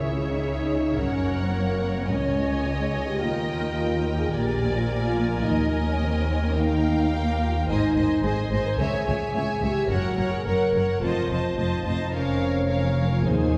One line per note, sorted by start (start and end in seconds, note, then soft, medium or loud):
0.00 0.98 C#2 soft
0.00 0.99 C#3 soft
0.00 1.00 C#3 soft
0.00 1.00 G#3 soft
0.00 0.28 E4 soft
0.00 0.40 G#4 soft
0.00 0.98 G#4 soft
0.00 2.06 C#5 soft
0.00 0.99 E5 soft
0.23 1.35 C#4 soft
0.28 0.42 D#4 soft
0.40 0.55 E4 medium
0.40 0.78 G#4 soft
0.57 0.98 D#4 medium
0.57 3.24 C#5 soft
0.79 1.00 G#4 soft
0.97 2.10 F#1 soft
0.97 2.13 F#2 soft
0.97 2.11 F#2 soft
0.97 1.39 C#4 medium
0.97 2.09 A#4 soft
0.97 2.11 F#5 soft
1.17 2.09 C#3 soft
1.36 1.54 C4 soft
1.36 2.46 C#4 soft
1.55 1.96 A#3 medium
1.55 1.91 F#4 soft
1.73 2.12 A#4 soft
1.92 2.13 F#4 soft
1.97 2.10 C4 medium
2.10 3.22 C#2 soft
2.10 3.23 C#2 soft
2.10 3.25 C#3 soft
2.10 2.65 C#4 medium
2.10 3.22 C#5 soft
2.10 4.34 D#5 soft
2.10 3.23 G#5 soft
2.29 3.25 G#3 soft
2.48 3.25 C#4 soft
2.66 2.94 G#3 medium
2.66 3.03 D#4 soft
2.85 3.25 G#4 soft
2.94 3.08 G#4 medium
3.04 3.59 D#4 soft
3.04 3.21 G4 medium
3.20 4.34 D#2 soft
3.20 4.37 D#3 soft
3.20 3.75 F4 medium
3.20 7.65 A#4 soft
3.20 4.33 G5 soft
3.41 4.70 A#3 soft
3.61 4.37 D#4 soft
3.76 4.18 F4 medium
3.76 4.14 G4 soft
3.98 6.20 A#4 soft
4.15 4.36 G4 soft
4.15 4.33 G#4 medium
4.31 5.43 A#1 medium
4.31 5.48 A#2 soft
4.31 5.44 A#2 soft
4.31 4.75 G4 medium
4.31 5.44 D5 medium
4.31 6.57 G#5 soft
4.53 5.48 F3 soft
4.72 5.65 A#3 soft
4.72 4.89 F4 medium
4.88 5.28 D4 soft
4.88 5.03 G4 medium
5.02 5.44 F4 medium
5.09 6.01 G#4 soft
5.29 5.49 D4 soft
5.43 7.68 D#2 medium
5.43 7.69 D#2 soft
5.43 5.72 D#4 medium
5.43 6.57 D#5 medium
5.47 6.58 D#3 medium
5.66 6.94 A#3 soft
5.84 6.00 C#4 medium
5.84 6.76 D#4 soft
6.00 6.43 C4 medium
6.00 6.39 G#4 soft
6.21 7.71 A#4 soft
6.40 6.57 C#4 medium
6.40 6.60 G#4 soft
6.55 7.72 D#3 medium
6.55 7.11 D#4 medium
6.55 7.69 F5 medium
6.55 7.69 G5 medium
6.77 8.23 D#4 soft
6.96 7.71 A#3 soft
7.12 7.40 A#3 medium
7.12 7.50 F4 soft
7.33 7.71 G4 soft
7.39 7.52 F4 medium
7.52 7.72 F4 soft
7.68 7.76 G#1 medium
7.68 7.78 G#2 soft
7.68 8.82 G#2 medium
7.68 8.22 D#4 medium
7.68 7.95 C5 medium
7.68 7.95 D#5 medium
7.68 7.96 G#5 medium
7.87 8.82 D#3 soft
7.96 8.04 G#1 medium
7.96 8.04 G#2 soft
7.96 8.23 C5 soft
7.96 8.23 D#5 soft
7.96 8.24 G#5 soft
8.06 8.82 C4 soft
8.22 8.30 G#1 medium
8.22 8.32 G#2 medium
8.22 8.59 D#4 soft
8.22 8.36 G#4 medium
8.22 8.51 C5 soft
8.22 8.50 D#5 soft
8.22 8.52 G#5 soft
8.42 9.54 G#4 soft
8.50 8.58 G#1 soft
8.50 8.60 G#2 medium
8.50 8.65 C5 medium
8.50 8.79 C5 soft
8.50 8.79 D#5 soft
8.50 8.80 G#5 medium
8.60 8.81 D#4 soft
8.66 8.80 A#4 medium
8.78 8.86 C#2 medium
8.78 8.87 C#2 medium
8.78 9.93 C#3 medium
8.78 9.63 G#4 medium
8.78 9.06 C#5 medium
8.78 9.07 E5 medium
8.78 9.08 G#5 soft
8.99 9.93 G#3 soft
9.06 9.14 C#2 medium
9.06 9.16 C#2 soft
9.06 9.34 C#5 soft
9.06 9.35 E5 soft
9.06 9.36 G#5 soft
9.17 10.45 C#4 soft
9.33 9.41 C#2 soft
9.33 9.44 C#2 medium
9.33 9.71 E4 soft
9.33 9.62 C#5 soft
9.33 9.62 E5 soft
9.38 9.64 G#5 medium
9.55 9.93 G#4 soft
9.61 9.69 C#2 medium
9.61 9.71 C#2 medium
9.61 9.90 G4 medium
9.61 9.90 C#5 soft
9.61 9.90 E5 soft
9.61 9.91 G#5 soft
9.73 9.93 E4 soft
9.90 9.98 F#1 medium
9.90 11.04 F#2 medium
9.90 9.99 F#2 medium
9.90 10.31 F#4 medium
9.90 10.18 A#4 medium
9.90 10.17 C#5 soft
9.90 10.18 F#5 medium
10.09 11.04 C#3 soft
10.17 10.25 F#1 medium
10.17 10.27 F#2 soft
10.17 10.45 A#4 soft
10.17 10.46 C#5 soft
10.17 10.47 F#5 soft
10.28 11.05 A#3 soft
10.28 10.45 G#4 medium
10.45 10.53 F#1 medium
10.45 10.56 F#2 medium
10.45 10.81 C#4 soft
10.45 11.00 A#4 medium
10.45 10.74 A#4 soft
10.45 10.74 C#5 soft
10.45 10.74 F#5 soft
10.65 11.04 F#4 soft
10.72 10.80 F#1 soft
10.72 10.83 F#2 soft
10.72 11.02 A#4 soft
10.72 11.02 C#5 soft
10.72 11.02 F#5 soft
10.82 11.04 C#4 soft
11.01 11.09 F1 medium
11.01 12.12 F2 medium
11.01 11.11 F2 medium
11.01 11.82 F4 medium
11.01 11.30 C5 soft
11.01 11.30 D#5 medium
11.01 11.28 A5 soft
11.21 12.16 C3 soft
11.29 11.37 F1 medium
11.29 11.39 F2 soft
11.29 11.58 C5 soft
11.29 11.58 D#5 soft
11.29 11.57 A5 soft
11.39 12.16 C4 soft
11.55 11.63 F1 soft
11.55 11.66 F2 soft
11.55 11.94 D#4 soft
11.55 11.85 C5 soft
11.55 11.86 D#5 soft
11.55 11.83 A5 soft
11.77 12.16 A4 soft
11.83 11.92 F1 soft
11.83 11.95 F2 soft
11.83 11.98 F4 medium
11.83 12.13 C5 soft
11.83 12.12 A5 soft
11.88 12.14 D#5 soft
11.95 12.16 D#4 soft
12.00 12.14 D#4 medium
12.13 13.21 F1 medium
12.13 13.28 F2 soft
12.13 13.22 F2 soft
12.13 12.69 C#4 medium
12.13 12.66 A#4 soft
12.13 12.66 C#5 soft
12.13 12.65 F5 medium
12.33 13.28 F3 soft
12.51 13.28 A#3 soft
12.68 13.06 C#4 soft
12.68 13.11 C#4 medium
12.68 13.24 A#4 soft
12.68 13.24 C#5 soft
12.68 13.24 F5 soft
13.11 13.25 F4 medium
13.24 13.58 D#2 soft
13.24 13.58 D#3 medium
13.24 13.58 D#4 medium
13.24 13.58 G#4 soft
13.24 13.54 C5 soft
13.24 13.58 G#5 soft
13.44 13.58 C4 soft
13.53 13.58 C#5 soft